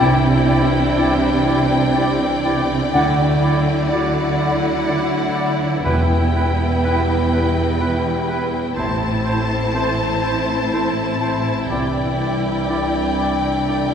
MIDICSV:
0, 0, Header, 1, 12, 480
1, 0, Start_track
1, 0, Tempo, 981997
1, 1434, Time_signature, 3, 2, 24, 8
1, 1912, Tempo, 970874
1, 4792, Tempo, 988468
1, 6834, End_track
2, 0, Start_track
2, 0, Title_t, "Flute section"
2, 0, Program_c, 0, 73
2, 237, Note_on_c, 0, 79, 76
2, 291, Note_off_c, 0, 79, 0
2, 482, Note_on_c, 0, 79, 60
2, 536, Note_off_c, 0, 79, 0
2, 723, Note_on_c, 0, 79, 64
2, 776, Note_off_c, 0, 79, 0
2, 956, Note_on_c, 0, 79, 64
2, 1010, Note_off_c, 0, 79, 0
2, 1195, Note_on_c, 0, 79, 60
2, 1249, Note_off_c, 0, 79, 0
2, 1434, Note_on_c, 0, 78, 82
2, 1488, Note_off_c, 0, 78, 0
2, 1677, Note_on_c, 0, 78, 72
2, 1730, Note_off_c, 0, 78, 0
2, 1909, Note_on_c, 0, 78, 58
2, 1962, Note_off_c, 0, 78, 0
2, 2155, Note_on_c, 0, 78, 57
2, 2208, Note_off_c, 0, 78, 0
2, 2392, Note_on_c, 0, 78, 59
2, 2445, Note_off_c, 0, 78, 0
2, 2625, Note_on_c, 0, 78, 69
2, 2680, Note_off_c, 0, 78, 0
2, 2872, Note_on_c, 0, 79, 75
2, 2927, Note_off_c, 0, 79, 0
2, 3119, Note_on_c, 0, 79, 67
2, 3173, Note_off_c, 0, 79, 0
2, 3355, Note_on_c, 0, 79, 59
2, 3409, Note_off_c, 0, 79, 0
2, 3596, Note_on_c, 0, 79, 53
2, 3650, Note_off_c, 0, 79, 0
2, 3830, Note_on_c, 0, 79, 57
2, 3884, Note_off_c, 0, 79, 0
2, 4070, Note_on_c, 0, 79, 60
2, 4124, Note_off_c, 0, 79, 0
2, 4308, Note_on_c, 0, 81, 67
2, 4361, Note_off_c, 0, 81, 0
2, 4550, Note_on_c, 0, 81, 60
2, 4604, Note_off_c, 0, 81, 0
2, 4796, Note_on_c, 0, 81, 58
2, 4849, Note_off_c, 0, 81, 0
2, 5031, Note_on_c, 0, 81, 53
2, 5085, Note_off_c, 0, 81, 0
2, 5273, Note_on_c, 0, 81, 53
2, 5326, Note_off_c, 0, 81, 0
2, 5505, Note_on_c, 0, 81, 50
2, 5559, Note_off_c, 0, 81, 0
2, 5746, Note_on_c, 0, 79, 65
2, 5800, Note_off_c, 0, 79, 0
2, 5988, Note_on_c, 0, 79, 54
2, 6041, Note_off_c, 0, 79, 0
2, 6222, Note_on_c, 0, 79, 48
2, 6277, Note_off_c, 0, 79, 0
2, 6466, Note_on_c, 0, 79, 47
2, 6521, Note_off_c, 0, 79, 0
2, 6714, Note_on_c, 0, 79, 49
2, 6767, Note_off_c, 0, 79, 0
2, 6834, End_track
3, 0, Start_track
3, 0, Title_t, "Violin section"
3, 0, Program_c, 1, 48
3, 0, Note_on_c, 1, 79, 84
3, 1895, Note_off_c, 1, 79, 0
3, 1913, Note_on_c, 1, 78, 69
3, 2871, Note_off_c, 1, 78, 0
3, 2873, Note_on_c, 1, 79, 73
3, 4291, Note_off_c, 1, 79, 0
3, 4309, Note_on_c, 1, 81, 78
3, 5727, Note_off_c, 1, 81, 0
3, 5745, Note_on_c, 1, 79, 71
3, 6834, Note_off_c, 1, 79, 0
3, 6834, End_track
4, 0, Start_track
4, 0, Title_t, "Oboe"
4, 0, Program_c, 2, 68
4, 0, Note_on_c, 2, 74, 68
4, 74, Note_off_c, 2, 74, 0
4, 239, Note_on_c, 2, 74, 61
4, 317, Note_off_c, 2, 74, 0
4, 473, Note_on_c, 2, 74, 68
4, 551, Note_off_c, 2, 74, 0
4, 717, Note_on_c, 2, 74, 53
4, 795, Note_off_c, 2, 74, 0
4, 955, Note_on_c, 2, 74, 60
4, 1033, Note_off_c, 2, 74, 0
4, 1193, Note_on_c, 2, 74, 64
4, 1271, Note_off_c, 2, 74, 0
4, 1433, Note_on_c, 2, 74, 67
4, 1512, Note_off_c, 2, 74, 0
4, 1678, Note_on_c, 2, 74, 57
4, 1757, Note_off_c, 2, 74, 0
4, 1917, Note_on_c, 2, 74, 67
4, 1996, Note_off_c, 2, 74, 0
4, 2153, Note_on_c, 2, 74, 50
4, 2232, Note_off_c, 2, 74, 0
4, 2384, Note_on_c, 2, 74, 54
4, 2463, Note_off_c, 2, 74, 0
4, 2622, Note_on_c, 2, 74, 58
4, 2701, Note_off_c, 2, 74, 0
4, 2871, Note_on_c, 2, 71, 65
4, 2950, Note_off_c, 2, 71, 0
4, 3117, Note_on_c, 2, 71, 54
4, 3196, Note_off_c, 2, 71, 0
4, 3361, Note_on_c, 2, 71, 66
4, 3440, Note_off_c, 2, 71, 0
4, 3600, Note_on_c, 2, 71, 47
4, 3680, Note_off_c, 2, 71, 0
4, 3840, Note_on_c, 2, 71, 60
4, 3919, Note_off_c, 2, 71, 0
4, 4076, Note_on_c, 2, 71, 62
4, 4155, Note_off_c, 2, 71, 0
4, 4308, Note_on_c, 2, 72, 60
4, 4387, Note_off_c, 2, 72, 0
4, 4553, Note_on_c, 2, 72, 49
4, 4632, Note_off_c, 2, 72, 0
4, 4797, Note_on_c, 2, 72, 62
4, 4875, Note_off_c, 2, 72, 0
4, 5035, Note_on_c, 2, 72, 52
4, 5113, Note_off_c, 2, 72, 0
4, 5274, Note_on_c, 2, 72, 52
4, 5352, Note_off_c, 2, 72, 0
4, 5513, Note_on_c, 2, 72, 48
4, 5591, Note_off_c, 2, 72, 0
4, 5747, Note_on_c, 2, 74, 54
4, 5825, Note_off_c, 2, 74, 0
4, 5987, Note_on_c, 2, 74, 48
4, 6065, Note_off_c, 2, 74, 0
4, 6229, Note_on_c, 2, 74, 53
4, 6307, Note_off_c, 2, 74, 0
4, 6464, Note_on_c, 2, 74, 45
4, 6542, Note_off_c, 2, 74, 0
4, 6712, Note_on_c, 2, 74, 51
4, 6790, Note_off_c, 2, 74, 0
4, 6834, End_track
5, 0, Start_track
5, 0, Title_t, "Violin section"
5, 0, Program_c, 3, 48
5, 0, Note_on_c, 3, 74, 72
5, 2851, Note_off_c, 3, 74, 0
5, 2874, Note_on_c, 3, 71, 64
5, 4308, Note_on_c, 3, 72, 74
5, 4311, Note_off_c, 3, 71, 0
5, 5746, Note_off_c, 3, 72, 0
5, 5748, Note_on_c, 3, 74, 72
5, 6834, Note_off_c, 3, 74, 0
5, 6834, End_track
6, 0, Start_track
6, 0, Title_t, "Clarinet"
6, 0, Program_c, 4, 71
6, 0, Note_on_c, 4, 64, 72
6, 75, Note_off_c, 4, 64, 0
6, 240, Note_on_c, 4, 64, 69
6, 318, Note_off_c, 4, 64, 0
6, 480, Note_on_c, 4, 64, 71
6, 559, Note_off_c, 4, 64, 0
6, 717, Note_on_c, 4, 64, 64
6, 795, Note_off_c, 4, 64, 0
6, 956, Note_on_c, 4, 64, 64
6, 1035, Note_off_c, 4, 64, 0
6, 1196, Note_on_c, 4, 64, 65
6, 1274, Note_off_c, 4, 64, 0
6, 1440, Note_on_c, 4, 64, 71
6, 1518, Note_off_c, 4, 64, 0
6, 1678, Note_on_c, 4, 64, 69
6, 1756, Note_off_c, 4, 64, 0
6, 1920, Note_on_c, 4, 64, 63
6, 1999, Note_off_c, 4, 64, 0
6, 2159, Note_on_c, 4, 64, 60
6, 2238, Note_off_c, 4, 64, 0
6, 2389, Note_on_c, 4, 64, 57
6, 2469, Note_off_c, 4, 64, 0
6, 2626, Note_on_c, 4, 64, 56
6, 2705, Note_off_c, 4, 64, 0
6, 2868, Note_on_c, 4, 64, 63
6, 2947, Note_off_c, 4, 64, 0
6, 3116, Note_on_c, 4, 64, 60
6, 3195, Note_off_c, 4, 64, 0
6, 3357, Note_on_c, 4, 64, 62
6, 3436, Note_off_c, 4, 64, 0
6, 3604, Note_on_c, 4, 64, 58
6, 3683, Note_off_c, 4, 64, 0
6, 3838, Note_on_c, 4, 64, 54
6, 3917, Note_off_c, 4, 64, 0
6, 4078, Note_on_c, 4, 64, 59
6, 4157, Note_off_c, 4, 64, 0
6, 4320, Note_on_c, 4, 64, 62
6, 4399, Note_off_c, 4, 64, 0
6, 4558, Note_on_c, 4, 64, 61
6, 4637, Note_off_c, 4, 64, 0
6, 4801, Note_on_c, 4, 64, 54
6, 4879, Note_off_c, 4, 64, 0
6, 5035, Note_on_c, 4, 64, 56
6, 5113, Note_off_c, 4, 64, 0
6, 5267, Note_on_c, 4, 64, 51
6, 5345, Note_off_c, 4, 64, 0
6, 5509, Note_on_c, 4, 64, 51
6, 5586, Note_off_c, 4, 64, 0
6, 5750, Note_on_c, 4, 64, 62
6, 5828, Note_off_c, 4, 64, 0
6, 5986, Note_on_c, 4, 64, 52
6, 6064, Note_off_c, 4, 64, 0
6, 6224, Note_on_c, 4, 64, 56
6, 6302, Note_off_c, 4, 64, 0
6, 6467, Note_on_c, 4, 64, 51
6, 6545, Note_off_c, 4, 64, 0
6, 6714, Note_on_c, 4, 64, 45
6, 6791, Note_off_c, 4, 64, 0
6, 6834, End_track
7, 0, Start_track
7, 0, Title_t, "Viola section"
7, 0, Program_c, 5, 48
7, 0, Note_on_c, 5, 64, 87
7, 1417, Note_off_c, 5, 64, 0
7, 1436, Note_on_c, 5, 64, 80
7, 4290, Note_off_c, 5, 64, 0
7, 4312, Note_on_c, 5, 64, 72
7, 6834, Note_off_c, 5, 64, 0
7, 6834, End_track
8, 0, Start_track
8, 0, Title_t, "Grand piano"
8, 0, Program_c, 6, 0
8, 0, Note_on_c, 6, 48, 68
8, 1, Note_on_c, 6, 36, 74
8, 74, Control_c, 6, 64, 127
8, 476, Note_on_c, 6, 62, 59
8, 477, Note_on_c, 6, 64, 51
8, 482, Note_on_c, 6, 67, 61
8, 937, Note_off_c, 6, 62, 0
8, 937, Note_off_c, 6, 64, 0
8, 940, Note_off_c, 6, 67, 0
8, 960, Note_on_c, 6, 62, 49
8, 962, Note_on_c, 6, 64, 52
8, 962, Note_on_c, 6, 67, 55
8, 1417, Note_off_c, 6, 62, 0
8, 1418, Note_off_c, 6, 48, 0
8, 1418, Note_off_c, 6, 64, 0
8, 1418, Note_off_c, 6, 67, 0
8, 1420, Note_off_c, 6, 36, 0
8, 1441, Note_on_c, 6, 38, 66
8, 1441, Note_on_c, 6, 50, 64
8, 1443, Control_c, 6, 64, 0
8, 1514, Control_c, 6, 64, 127
8, 1917, Note_on_c, 6, 62, 54
8, 1920, Note_on_c, 6, 64, 55
8, 1922, Note_on_c, 6, 66, 63
8, 2370, Note_off_c, 6, 62, 0
8, 2371, Note_off_c, 6, 64, 0
8, 2372, Note_off_c, 6, 66, 0
8, 2394, Note_on_c, 6, 62, 42
8, 2397, Note_on_c, 6, 64, 47
8, 2399, Note_on_c, 6, 66, 52
8, 2854, Note_off_c, 6, 38, 0
8, 2854, Note_off_c, 6, 50, 0
8, 2854, Note_off_c, 6, 62, 0
8, 2856, Note_off_c, 6, 64, 0
8, 2857, Note_off_c, 6, 66, 0
8, 2873, Note_on_c, 6, 40, 64
8, 2874, Note_on_c, 6, 28, 57
8, 2880, Control_c, 6, 64, 0
8, 2955, Control_c, 6, 64, 127
8, 3362, Note_on_c, 6, 59, 54
8, 3364, Note_on_c, 6, 64, 53
8, 3366, Note_on_c, 6, 67, 55
8, 3818, Note_off_c, 6, 59, 0
8, 3819, Note_off_c, 6, 64, 0
8, 3820, Note_off_c, 6, 67, 0
8, 3840, Note_on_c, 6, 59, 47
8, 3843, Note_on_c, 6, 64, 45
8, 3845, Note_on_c, 6, 67, 51
8, 4291, Note_off_c, 6, 28, 0
8, 4291, Note_off_c, 6, 40, 0
8, 4292, Note_off_c, 6, 59, 0
8, 4294, Note_off_c, 6, 64, 0
8, 4295, Note_off_c, 6, 67, 0
8, 4312, Note_on_c, 6, 33, 67
8, 4313, Note_on_c, 6, 45, 60
8, 4317, Control_c, 6, 64, 0
8, 4390, Control_c, 6, 64, 127
8, 4792, Note_on_c, 6, 60, 50
8, 4794, Note_on_c, 6, 64, 54
8, 4796, Note_on_c, 6, 69, 53
8, 5249, Note_off_c, 6, 60, 0
8, 5250, Note_off_c, 6, 64, 0
8, 5251, Note_off_c, 6, 69, 0
8, 5272, Note_on_c, 6, 60, 44
8, 5273, Note_on_c, 6, 64, 41
8, 5275, Note_on_c, 6, 69, 42
8, 5728, Note_off_c, 6, 33, 0
8, 5729, Note_off_c, 6, 45, 0
8, 5729, Note_off_c, 6, 60, 0
8, 5730, Note_off_c, 6, 64, 0
8, 5731, Note_off_c, 6, 69, 0
8, 5751, Note_on_c, 6, 36, 61
8, 5752, Note_on_c, 6, 48, 57
8, 5754, Control_c, 6, 64, 0
8, 5839, Control_c, 6, 64, 127
8, 6229, Note_on_c, 6, 62, 43
8, 6231, Note_on_c, 6, 64, 47
8, 6233, Note_on_c, 6, 67, 54
8, 6691, Note_off_c, 6, 62, 0
8, 6692, Note_off_c, 6, 64, 0
8, 6693, Note_off_c, 6, 67, 0
8, 6711, Note_on_c, 6, 62, 40
8, 6711, Note_on_c, 6, 64, 38
8, 6715, Note_on_c, 6, 67, 43
8, 6834, Note_off_c, 6, 36, 0
8, 6834, Note_off_c, 6, 48, 0
8, 6834, Note_off_c, 6, 62, 0
8, 6834, Note_off_c, 6, 64, 0
8, 6834, Note_off_c, 6, 67, 0
8, 6834, End_track
9, 0, Start_track
9, 0, Title_t, "French horn section"
9, 0, Program_c, 7, 60
9, 0, Note_on_c, 7, 52, 86
9, 0, Note_on_c, 7, 62, 75
9, 1415, Note_off_c, 7, 52, 0
9, 1434, Note_off_c, 7, 62, 0
9, 1437, Note_on_c, 7, 54, 83
9, 1438, Note_on_c, 7, 64, 71
9, 2852, Note_off_c, 7, 54, 0
9, 2853, Note_off_c, 7, 64, 0
9, 2880, Note_on_c, 7, 55, 79
9, 2884, Note_on_c, 7, 59, 68
9, 4230, Note_off_c, 7, 55, 0
9, 4230, Note_off_c, 7, 59, 0
9, 4314, Note_on_c, 7, 52, 86
9, 4316, Note_on_c, 7, 60, 73
9, 5730, Note_off_c, 7, 60, 0
9, 5750, Note_on_c, 7, 62, 77
9, 6834, Note_off_c, 7, 52, 0
9, 6834, Note_off_c, 7, 62, 0
9, 6834, End_track
10, 0, Start_track
10, 0, Title_t, "Cello section"
10, 0, Program_c, 8, 48
10, 0, Note_on_c, 8, 48, 89
10, 1417, Note_off_c, 8, 48, 0
10, 1437, Note_on_c, 8, 50, 77
10, 2852, Note_off_c, 8, 50, 0
10, 2874, Note_on_c, 8, 40, 84
10, 4291, Note_off_c, 8, 40, 0
10, 4312, Note_on_c, 8, 45, 81
10, 5728, Note_off_c, 8, 45, 0
10, 5746, Note_on_c, 8, 36, 75
10, 6834, Note_off_c, 8, 36, 0
10, 6834, End_track
11, 0, Start_track
11, 0, Title_t, "Timpani"
11, 0, Program_c, 10, 47
11, 2872, Note_on_c, 10, 40, 76
11, 3578, Note_off_c, 10, 40, 0
11, 6834, End_track
12, 0, Start_track
12, 0, Title_t, "Double bass section"
12, 0, Program_c, 11, 48
12, 0, Note_on_c, 11, 36, 73
12, 1416, Note_off_c, 11, 36, 0
12, 1437, Note_on_c, 11, 38, 75
12, 2852, Note_off_c, 11, 38, 0
12, 2873, Note_on_c, 11, 28, 73
12, 4291, Note_off_c, 11, 28, 0
12, 4313, Note_on_c, 11, 33, 72
12, 5729, Note_off_c, 11, 33, 0
12, 5749, Note_on_c, 11, 36, 67
12, 6834, Note_off_c, 11, 36, 0
12, 6834, End_track
0, 0, End_of_file